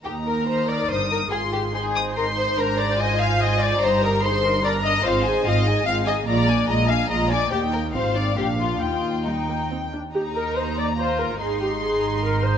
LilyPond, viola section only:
\new Staff \with { instrumentName = "Viola section" } { \time 3/4 \key ees \major \tempo 4 = 144 << { bes'2. | aes'4 c''2~ | c''2. | g'4 aes'8 bes'8 bes'4 |
f'8 aes'8 f'8 aes'8 f'8 aes'8 | f'8 d'8 f'8 d'8 f'8 d'8 | ees'4 f'8 ees'8 d'4 | ees'4 g8 bes8 c'8 d'8 |
g'8 bes'8 c''8 d''8 c''8 bes'8 | aes'8 g'8 aes'4 bes'8 c''8 | } \\ { ees'4 ees'2 | f'4 ees'2 | d'4 f'2 | ees'4 ees'4 d'4 |
c'8 ees'8 c'8 ees'8 c'8 ees'8 | aes8 bes8 aes8 bes8 aes8 bes8 | bes4 c'4 bes4 | bes4 r2 |
r2. | r2. | } >> }